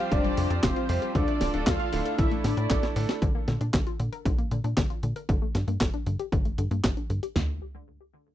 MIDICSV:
0, 0, Header, 1, 7, 480
1, 0, Start_track
1, 0, Tempo, 517241
1, 1068, Time_signature, 4, 2, 24, 8
1, 7748, End_track
2, 0, Start_track
2, 0, Title_t, "Analog polysynth"
2, 0, Program_c, 0, 90
2, 0, Note_on_c, 0, 77, 118
2, 110, Note_on_c, 0, 74, 102
2, 115, Note_on_c, 0, 62, 84
2, 124, Note_off_c, 0, 77, 0
2, 558, Note_off_c, 0, 62, 0
2, 590, Note_on_c, 0, 72, 95
2, 596, Note_on_c, 0, 60, 78
2, 603, Note_off_c, 0, 74, 0
2, 1035, Note_off_c, 0, 72, 0
2, 1039, Note_off_c, 0, 60, 0
2, 1069, Note_on_c, 0, 74, 108
2, 1076, Note_on_c, 0, 62, 85
2, 1518, Note_off_c, 0, 62, 0
2, 1548, Note_on_c, 0, 77, 107
2, 1555, Note_on_c, 0, 65, 84
2, 1563, Note_off_c, 0, 74, 0
2, 1998, Note_off_c, 0, 65, 0
2, 2027, Note_on_c, 0, 76, 103
2, 2034, Note_on_c, 0, 64, 78
2, 2042, Note_off_c, 0, 77, 0
2, 2135, Note_off_c, 0, 76, 0
2, 2141, Note_off_c, 0, 64, 0
2, 2267, Note_on_c, 0, 74, 93
2, 2275, Note_on_c, 0, 62, 72
2, 2714, Note_off_c, 0, 74, 0
2, 2718, Note_off_c, 0, 62, 0
2, 7748, End_track
3, 0, Start_track
3, 0, Title_t, "String section"
3, 0, Program_c, 1, 48
3, 0, Note_on_c, 1, 53, 78
3, 0, Note_on_c, 1, 65, 70
3, 0, Note_on_c, 1, 67, 72
3, 0, Note_on_c, 1, 72, 88
3, 1049, Note_off_c, 1, 72, 0
3, 1050, Note_off_c, 1, 53, 0
3, 1050, Note_off_c, 1, 67, 0
3, 1068, Note_on_c, 1, 62, 70
3, 1068, Note_on_c, 1, 69, 84
3, 1069, Note_on_c, 1, 50, 73
3, 1999, Note_off_c, 1, 65, 0
3, 2018, Note_off_c, 1, 69, 0
3, 2019, Note_off_c, 1, 50, 0
3, 2027, Note_on_c, 1, 64, 81
3, 2028, Note_on_c, 1, 57, 79
3, 2969, Note_off_c, 1, 62, 0
3, 2978, Note_off_c, 1, 57, 0
3, 2978, Note_off_c, 1, 64, 0
3, 7748, End_track
4, 0, Start_track
4, 0, Title_t, "Electric grand piano"
4, 0, Program_c, 2, 2
4, 0, Note_on_c, 2, 55, 101
4, 0, Note_on_c, 2, 60, 95
4, 0, Note_on_c, 2, 65, 96
4, 0, Note_on_c, 2, 67, 111
4, 199, Note_off_c, 2, 55, 0
4, 199, Note_off_c, 2, 60, 0
4, 199, Note_off_c, 2, 65, 0
4, 199, Note_off_c, 2, 67, 0
4, 227, Note_on_c, 2, 55, 77
4, 227, Note_on_c, 2, 60, 72
4, 228, Note_on_c, 2, 65, 69
4, 228, Note_on_c, 2, 67, 84
4, 415, Note_off_c, 2, 55, 0
4, 415, Note_off_c, 2, 60, 0
4, 415, Note_off_c, 2, 65, 0
4, 415, Note_off_c, 2, 67, 0
4, 587, Note_on_c, 2, 55, 73
4, 587, Note_on_c, 2, 60, 68
4, 587, Note_on_c, 2, 65, 68
4, 587, Note_on_c, 2, 67, 87
4, 799, Note_off_c, 2, 55, 0
4, 799, Note_off_c, 2, 60, 0
4, 799, Note_off_c, 2, 65, 0
4, 799, Note_off_c, 2, 67, 0
4, 827, Note_on_c, 2, 55, 93
4, 827, Note_on_c, 2, 60, 88
4, 827, Note_on_c, 2, 65, 88
4, 827, Note_on_c, 2, 67, 105
4, 1032, Note_off_c, 2, 55, 0
4, 1032, Note_off_c, 2, 60, 0
4, 1032, Note_off_c, 2, 65, 0
4, 1032, Note_off_c, 2, 67, 0
4, 1067, Note_on_c, 2, 57, 74
4, 1067, Note_on_c, 2, 62, 71
4, 1067, Note_on_c, 2, 65, 70
4, 1067, Note_on_c, 2, 69, 83
4, 1399, Note_off_c, 2, 57, 0
4, 1399, Note_off_c, 2, 62, 0
4, 1399, Note_off_c, 2, 65, 0
4, 1399, Note_off_c, 2, 69, 0
4, 1427, Note_on_c, 2, 57, 91
4, 1427, Note_on_c, 2, 62, 83
4, 1427, Note_on_c, 2, 65, 84
4, 1427, Note_on_c, 2, 69, 107
4, 1727, Note_off_c, 2, 57, 0
4, 1727, Note_off_c, 2, 62, 0
4, 1727, Note_off_c, 2, 65, 0
4, 1727, Note_off_c, 2, 69, 0
4, 1786, Note_on_c, 2, 57, 102
4, 1786, Note_on_c, 2, 69, 107
4, 1787, Note_on_c, 2, 62, 93
4, 1787, Note_on_c, 2, 64, 93
4, 2118, Note_off_c, 2, 57, 0
4, 2118, Note_off_c, 2, 64, 0
4, 2118, Note_off_c, 2, 69, 0
4, 2119, Note_off_c, 2, 62, 0
4, 2147, Note_on_c, 2, 57, 78
4, 2147, Note_on_c, 2, 62, 70
4, 2147, Note_on_c, 2, 64, 71
4, 2147, Note_on_c, 2, 69, 84
4, 2335, Note_off_c, 2, 57, 0
4, 2335, Note_off_c, 2, 62, 0
4, 2335, Note_off_c, 2, 64, 0
4, 2335, Note_off_c, 2, 69, 0
4, 2507, Note_on_c, 2, 69, 86
4, 2508, Note_on_c, 2, 57, 73
4, 2508, Note_on_c, 2, 62, 67
4, 2508, Note_on_c, 2, 64, 70
4, 2719, Note_off_c, 2, 57, 0
4, 2719, Note_off_c, 2, 62, 0
4, 2719, Note_off_c, 2, 64, 0
4, 2719, Note_off_c, 2, 69, 0
4, 2748, Note_on_c, 2, 57, 94
4, 2748, Note_on_c, 2, 62, 88
4, 2748, Note_on_c, 2, 64, 82
4, 2748, Note_on_c, 2, 69, 104
4, 2952, Note_off_c, 2, 57, 0
4, 2952, Note_off_c, 2, 62, 0
4, 2952, Note_off_c, 2, 64, 0
4, 2952, Note_off_c, 2, 69, 0
4, 7748, End_track
5, 0, Start_track
5, 0, Title_t, "Synth arpeggio sound"
5, 0, Program_c, 3, 84
5, 107, Note_on_c, 3, 48, 99
5, 222, Note_off_c, 3, 48, 0
5, 227, Note_on_c, 3, 55, 79
5, 342, Note_off_c, 3, 55, 0
5, 348, Note_on_c, 3, 48, 100
5, 404, Note_off_c, 3, 48, 0
5, 468, Note_on_c, 3, 60, 77
5, 524, Note_off_c, 3, 60, 0
5, 588, Note_on_c, 3, 48, 108
5, 644, Note_off_c, 3, 48, 0
5, 708, Note_on_c, 3, 65, 78
5, 822, Note_off_c, 3, 65, 0
5, 827, Note_on_c, 3, 48, 79
5, 941, Note_off_c, 3, 48, 0
5, 947, Note_on_c, 3, 67, 100
5, 1003, Note_off_c, 3, 67, 0
5, 1067, Note_on_c, 3, 50, 102
5, 1181, Note_off_c, 3, 50, 0
5, 1187, Note_on_c, 3, 57, 76
5, 1301, Note_off_c, 3, 57, 0
5, 1307, Note_on_c, 3, 50, 106
5, 1363, Note_off_c, 3, 50, 0
5, 1427, Note_on_c, 3, 62, 77
5, 1483, Note_off_c, 3, 62, 0
5, 1547, Note_on_c, 3, 50, 103
5, 1603, Note_off_c, 3, 50, 0
5, 1667, Note_on_c, 3, 65, 77
5, 1782, Note_off_c, 3, 65, 0
5, 1787, Note_on_c, 3, 50, 81
5, 1902, Note_off_c, 3, 50, 0
5, 1907, Note_on_c, 3, 69, 104
5, 1963, Note_off_c, 3, 69, 0
5, 2027, Note_on_c, 3, 50, 100
5, 2142, Note_off_c, 3, 50, 0
5, 2147, Note_on_c, 3, 57, 76
5, 2262, Note_off_c, 3, 57, 0
5, 2268, Note_on_c, 3, 50, 97
5, 2324, Note_off_c, 3, 50, 0
5, 2387, Note_on_c, 3, 62, 78
5, 2443, Note_off_c, 3, 62, 0
5, 2507, Note_on_c, 3, 50, 106
5, 2563, Note_off_c, 3, 50, 0
5, 2628, Note_on_c, 3, 64, 78
5, 2742, Note_off_c, 3, 64, 0
5, 2748, Note_on_c, 3, 50, 79
5, 2862, Note_off_c, 3, 50, 0
5, 2868, Note_on_c, 3, 69, 100
5, 2924, Note_off_c, 3, 69, 0
5, 2987, Note_on_c, 3, 50, 96
5, 3102, Note_off_c, 3, 50, 0
5, 3108, Note_on_c, 3, 58, 75
5, 3222, Note_off_c, 3, 58, 0
5, 3228, Note_on_c, 3, 50, 106
5, 3284, Note_off_c, 3, 50, 0
5, 3348, Note_on_c, 3, 62, 75
5, 3404, Note_off_c, 3, 62, 0
5, 3469, Note_on_c, 3, 50, 100
5, 3524, Note_off_c, 3, 50, 0
5, 3589, Note_on_c, 3, 65, 71
5, 3703, Note_off_c, 3, 65, 0
5, 3708, Note_on_c, 3, 50, 75
5, 3822, Note_off_c, 3, 50, 0
5, 3828, Note_on_c, 3, 70, 99
5, 3884, Note_off_c, 3, 70, 0
5, 3948, Note_on_c, 3, 50, 101
5, 4062, Note_off_c, 3, 50, 0
5, 4068, Note_on_c, 3, 58, 73
5, 4182, Note_off_c, 3, 58, 0
5, 4188, Note_on_c, 3, 50, 99
5, 4244, Note_off_c, 3, 50, 0
5, 4308, Note_on_c, 3, 62, 76
5, 4364, Note_off_c, 3, 62, 0
5, 4428, Note_on_c, 3, 50, 105
5, 4484, Note_off_c, 3, 50, 0
5, 4549, Note_on_c, 3, 65, 79
5, 4662, Note_off_c, 3, 65, 0
5, 4669, Note_on_c, 3, 50, 77
5, 4782, Note_off_c, 3, 50, 0
5, 4789, Note_on_c, 3, 70, 97
5, 4844, Note_off_c, 3, 70, 0
5, 4909, Note_on_c, 3, 50, 102
5, 5023, Note_off_c, 3, 50, 0
5, 5029, Note_on_c, 3, 57, 78
5, 5143, Note_off_c, 3, 57, 0
5, 5149, Note_on_c, 3, 50, 100
5, 5204, Note_off_c, 3, 50, 0
5, 5269, Note_on_c, 3, 58, 75
5, 5325, Note_off_c, 3, 58, 0
5, 5389, Note_on_c, 3, 50, 101
5, 5445, Note_off_c, 3, 50, 0
5, 5509, Note_on_c, 3, 62, 71
5, 5623, Note_off_c, 3, 62, 0
5, 5629, Note_on_c, 3, 50, 78
5, 5743, Note_off_c, 3, 50, 0
5, 5749, Note_on_c, 3, 67, 100
5, 5804, Note_off_c, 3, 67, 0
5, 5868, Note_on_c, 3, 50, 98
5, 5982, Note_off_c, 3, 50, 0
5, 5989, Note_on_c, 3, 57, 74
5, 6102, Note_off_c, 3, 57, 0
5, 6108, Note_on_c, 3, 50, 102
5, 6164, Note_off_c, 3, 50, 0
5, 6228, Note_on_c, 3, 58, 77
5, 6284, Note_off_c, 3, 58, 0
5, 6348, Note_on_c, 3, 50, 103
5, 6404, Note_off_c, 3, 50, 0
5, 6469, Note_on_c, 3, 62, 74
5, 6582, Note_off_c, 3, 62, 0
5, 6588, Note_on_c, 3, 50, 78
5, 6702, Note_off_c, 3, 50, 0
5, 6709, Note_on_c, 3, 67, 100
5, 6764, Note_off_c, 3, 67, 0
5, 6828, Note_on_c, 3, 50, 90
5, 7051, Note_off_c, 3, 50, 0
5, 7748, End_track
6, 0, Start_track
6, 0, Title_t, "Analog synth bass"
6, 0, Program_c, 4, 38
6, 108, Note_on_c, 4, 29, 95
6, 296, Note_off_c, 4, 29, 0
6, 347, Note_on_c, 4, 41, 89
6, 441, Note_off_c, 4, 41, 0
6, 467, Note_on_c, 4, 41, 104
6, 561, Note_off_c, 4, 41, 0
6, 588, Note_on_c, 4, 29, 93
6, 682, Note_off_c, 4, 29, 0
6, 827, Note_on_c, 4, 41, 92
6, 922, Note_off_c, 4, 41, 0
6, 1068, Note_on_c, 4, 38, 100
6, 1162, Note_off_c, 4, 38, 0
6, 1307, Note_on_c, 4, 26, 102
6, 1402, Note_off_c, 4, 26, 0
6, 1427, Note_on_c, 4, 26, 93
6, 1521, Note_off_c, 4, 26, 0
6, 1548, Note_on_c, 4, 38, 105
6, 1642, Note_off_c, 4, 38, 0
6, 1787, Note_on_c, 4, 26, 98
6, 1882, Note_off_c, 4, 26, 0
6, 2028, Note_on_c, 4, 33, 97
6, 2216, Note_off_c, 4, 33, 0
6, 2267, Note_on_c, 4, 45, 92
6, 2362, Note_off_c, 4, 45, 0
6, 2388, Note_on_c, 4, 45, 98
6, 2482, Note_off_c, 4, 45, 0
6, 2508, Note_on_c, 4, 33, 95
6, 2696, Note_off_c, 4, 33, 0
6, 2748, Note_on_c, 4, 45, 100
6, 2842, Note_off_c, 4, 45, 0
6, 2988, Note_on_c, 4, 34, 101
6, 3082, Note_off_c, 4, 34, 0
6, 3228, Note_on_c, 4, 46, 101
6, 3322, Note_off_c, 4, 46, 0
6, 3348, Note_on_c, 4, 46, 88
6, 3442, Note_off_c, 4, 46, 0
6, 3468, Note_on_c, 4, 34, 95
6, 3562, Note_off_c, 4, 34, 0
6, 3709, Note_on_c, 4, 46, 89
6, 3802, Note_off_c, 4, 46, 0
6, 3948, Note_on_c, 4, 34, 96
6, 4136, Note_off_c, 4, 34, 0
6, 4188, Note_on_c, 4, 46, 88
6, 4282, Note_off_c, 4, 46, 0
6, 4308, Note_on_c, 4, 46, 94
6, 4402, Note_off_c, 4, 46, 0
6, 4428, Note_on_c, 4, 34, 92
6, 4522, Note_off_c, 4, 34, 0
6, 4668, Note_on_c, 4, 46, 90
6, 4762, Note_off_c, 4, 46, 0
6, 4908, Note_on_c, 4, 31, 96
6, 5002, Note_off_c, 4, 31, 0
6, 5147, Note_on_c, 4, 43, 95
6, 5242, Note_off_c, 4, 43, 0
6, 5267, Note_on_c, 4, 43, 92
6, 5362, Note_off_c, 4, 43, 0
6, 5388, Note_on_c, 4, 31, 102
6, 5482, Note_off_c, 4, 31, 0
6, 5628, Note_on_c, 4, 43, 90
6, 5722, Note_off_c, 4, 43, 0
6, 5868, Note_on_c, 4, 31, 94
6, 6056, Note_off_c, 4, 31, 0
6, 6107, Note_on_c, 4, 43, 92
6, 6201, Note_off_c, 4, 43, 0
6, 6227, Note_on_c, 4, 43, 102
6, 6321, Note_off_c, 4, 43, 0
6, 6348, Note_on_c, 4, 31, 91
6, 6442, Note_off_c, 4, 31, 0
6, 6587, Note_on_c, 4, 43, 89
6, 6682, Note_off_c, 4, 43, 0
6, 6828, Note_on_c, 4, 38, 96
6, 7051, Note_off_c, 4, 38, 0
6, 7748, End_track
7, 0, Start_track
7, 0, Title_t, "Drums"
7, 107, Note_on_c, 9, 42, 84
7, 108, Note_on_c, 9, 36, 113
7, 200, Note_off_c, 9, 42, 0
7, 201, Note_off_c, 9, 36, 0
7, 227, Note_on_c, 9, 42, 38
7, 320, Note_off_c, 9, 42, 0
7, 347, Note_on_c, 9, 46, 115
7, 440, Note_off_c, 9, 46, 0
7, 467, Note_on_c, 9, 42, 52
7, 560, Note_off_c, 9, 42, 0
7, 587, Note_on_c, 9, 38, 124
7, 587, Note_on_c, 9, 39, 101
7, 587, Note_on_c, 9, 42, 83
7, 588, Note_on_c, 9, 36, 101
7, 680, Note_off_c, 9, 38, 0
7, 680, Note_off_c, 9, 39, 0
7, 680, Note_off_c, 9, 42, 0
7, 681, Note_off_c, 9, 36, 0
7, 708, Note_on_c, 9, 42, 40
7, 800, Note_off_c, 9, 42, 0
7, 827, Note_on_c, 9, 46, 99
7, 920, Note_off_c, 9, 46, 0
7, 947, Note_on_c, 9, 42, 61
7, 1040, Note_off_c, 9, 42, 0
7, 1067, Note_on_c, 9, 42, 81
7, 1068, Note_on_c, 9, 36, 116
7, 1160, Note_off_c, 9, 36, 0
7, 1160, Note_off_c, 9, 42, 0
7, 1187, Note_on_c, 9, 42, 39
7, 1280, Note_off_c, 9, 42, 0
7, 1307, Note_on_c, 9, 38, 64
7, 1307, Note_on_c, 9, 46, 111
7, 1400, Note_off_c, 9, 38, 0
7, 1400, Note_off_c, 9, 46, 0
7, 1427, Note_on_c, 9, 42, 57
7, 1520, Note_off_c, 9, 42, 0
7, 1547, Note_on_c, 9, 38, 120
7, 1547, Note_on_c, 9, 39, 104
7, 1547, Note_on_c, 9, 42, 88
7, 1548, Note_on_c, 9, 36, 106
7, 1640, Note_off_c, 9, 38, 0
7, 1640, Note_off_c, 9, 39, 0
7, 1640, Note_off_c, 9, 42, 0
7, 1641, Note_off_c, 9, 36, 0
7, 1668, Note_on_c, 9, 42, 40
7, 1761, Note_off_c, 9, 42, 0
7, 1787, Note_on_c, 9, 46, 95
7, 1880, Note_off_c, 9, 46, 0
7, 1907, Note_on_c, 9, 42, 57
7, 2000, Note_off_c, 9, 42, 0
7, 2027, Note_on_c, 9, 42, 87
7, 2028, Note_on_c, 9, 36, 115
7, 2120, Note_off_c, 9, 36, 0
7, 2120, Note_off_c, 9, 42, 0
7, 2147, Note_on_c, 9, 42, 40
7, 2240, Note_off_c, 9, 42, 0
7, 2267, Note_on_c, 9, 38, 61
7, 2267, Note_on_c, 9, 46, 109
7, 2360, Note_off_c, 9, 38, 0
7, 2360, Note_off_c, 9, 46, 0
7, 2387, Note_on_c, 9, 42, 54
7, 2480, Note_off_c, 9, 42, 0
7, 2507, Note_on_c, 9, 38, 65
7, 2507, Note_on_c, 9, 39, 108
7, 2507, Note_on_c, 9, 42, 86
7, 2508, Note_on_c, 9, 36, 104
7, 2600, Note_off_c, 9, 38, 0
7, 2600, Note_off_c, 9, 39, 0
7, 2600, Note_off_c, 9, 42, 0
7, 2601, Note_off_c, 9, 36, 0
7, 2627, Note_on_c, 9, 38, 62
7, 2627, Note_on_c, 9, 42, 40
7, 2720, Note_off_c, 9, 38, 0
7, 2720, Note_off_c, 9, 42, 0
7, 2747, Note_on_c, 9, 46, 94
7, 2840, Note_off_c, 9, 46, 0
7, 2868, Note_on_c, 9, 38, 91
7, 2868, Note_on_c, 9, 42, 57
7, 2960, Note_off_c, 9, 38, 0
7, 2960, Note_off_c, 9, 42, 0
7, 2987, Note_on_c, 9, 42, 83
7, 2988, Note_on_c, 9, 36, 123
7, 3080, Note_off_c, 9, 42, 0
7, 3081, Note_off_c, 9, 36, 0
7, 3228, Note_on_c, 9, 38, 59
7, 3228, Note_on_c, 9, 42, 85
7, 3320, Note_off_c, 9, 38, 0
7, 3320, Note_off_c, 9, 42, 0
7, 3348, Note_on_c, 9, 42, 56
7, 3441, Note_off_c, 9, 42, 0
7, 3468, Note_on_c, 9, 36, 103
7, 3468, Note_on_c, 9, 38, 124
7, 3468, Note_on_c, 9, 39, 102
7, 3468, Note_on_c, 9, 42, 81
7, 3561, Note_off_c, 9, 36, 0
7, 3561, Note_off_c, 9, 38, 0
7, 3561, Note_off_c, 9, 39, 0
7, 3561, Note_off_c, 9, 42, 0
7, 3588, Note_on_c, 9, 42, 38
7, 3681, Note_off_c, 9, 42, 0
7, 3709, Note_on_c, 9, 42, 84
7, 3801, Note_off_c, 9, 42, 0
7, 3829, Note_on_c, 9, 42, 54
7, 3922, Note_off_c, 9, 42, 0
7, 3948, Note_on_c, 9, 36, 115
7, 3949, Note_on_c, 9, 42, 83
7, 4041, Note_off_c, 9, 36, 0
7, 4042, Note_off_c, 9, 42, 0
7, 4069, Note_on_c, 9, 42, 38
7, 4162, Note_off_c, 9, 42, 0
7, 4189, Note_on_c, 9, 42, 85
7, 4282, Note_off_c, 9, 42, 0
7, 4309, Note_on_c, 9, 42, 53
7, 4402, Note_off_c, 9, 42, 0
7, 4428, Note_on_c, 9, 36, 108
7, 4429, Note_on_c, 9, 38, 117
7, 4429, Note_on_c, 9, 39, 109
7, 4429, Note_on_c, 9, 42, 84
7, 4521, Note_off_c, 9, 36, 0
7, 4522, Note_off_c, 9, 38, 0
7, 4522, Note_off_c, 9, 39, 0
7, 4522, Note_off_c, 9, 42, 0
7, 4549, Note_on_c, 9, 42, 40
7, 4642, Note_off_c, 9, 42, 0
7, 4668, Note_on_c, 9, 42, 84
7, 4761, Note_off_c, 9, 42, 0
7, 4788, Note_on_c, 9, 42, 58
7, 4881, Note_off_c, 9, 42, 0
7, 4908, Note_on_c, 9, 36, 126
7, 4909, Note_on_c, 9, 42, 77
7, 5001, Note_off_c, 9, 36, 0
7, 5001, Note_off_c, 9, 42, 0
7, 5149, Note_on_c, 9, 38, 65
7, 5149, Note_on_c, 9, 42, 82
7, 5242, Note_off_c, 9, 38, 0
7, 5242, Note_off_c, 9, 42, 0
7, 5269, Note_on_c, 9, 42, 55
7, 5362, Note_off_c, 9, 42, 0
7, 5388, Note_on_c, 9, 36, 109
7, 5389, Note_on_c, 9, 38, 126
7, 5389, Note_on_c, 9, 39, 108
7, 5389, Note_on_c, 9, 42, 78
7, 5481, Note_off_c, 9, 36, 0
7, 5482, Note_off_c, 9, 38, 0
7, 5482, Note_off_c, 9, 39, 0
7, 5482, Note_off_c, 9, 42, 0
7, 5508, Note_on_c, 9, 42, 37
7, 5601, Note_off_c, 9, 42, 0
7, 5628, Note_on_c, 9, 42, 83
7, 5721, Note_off_c, 9, 42, 0
7, 5749, Note_on_c, 9, 42, 54
7, 5842, Note_off_c, 9, 42, 0
7, 5868, Note_on_c, 9, 36, 122
7, 5868, Note_on_c, 9, 42, 81
7, 5961, Note_off_c, 9, 36, 0
7, 5961, Note_off_c, 9, 42, 0
7, 5988, Note_on_c, 9, 42, 37
7, 6081, Note_off_c, 9, 42, 0
7, 6108, Note_on_c, 9, 42, 79
7, 6201, Note_off_c, 9, 42, 0
7, 6228, Note_on_c, 9, 42, 49
7, 6321, Note_off_c, 9, 42, 0
7, 6348, Note_on_c, 9, 36, 107
7, 6348, Note_on_c, 9, 38, 124
7, 6348, Note_on_c, 9, 39, 113
7, 6348, Note_on_c, 9, 42, 81
7, 6441, Note_off_c, 9, 36, 0
7, 6441, Note_off_c, 9, 38, 0
7, 6441, Note_off_c, 9, 39, 0
7, 6441, Note_off_c, 9, 42, 0
7, 6469, Note_on_c, 9, 42, 37
7, 6561, Note_off_c, 9, 42, 0
7, 6589, Note_on_c, 9, 42, 77
7, 6681, Note_off_c, 9, 42, 0
7, 6709, Note_on_c, 9, 42, 56
7, 6802, Note_off_c, 9, 42, 0
7, 6827, Note_on_c, 9, 38, 109
7, 6827, Note_on_c, 9, 43, 108
7, 6920, Note_off_c, 9, 38, 0
7, 6920, Note_off_c, 9, 43, 0
7, 7748, End_track
0, 0, End_of_file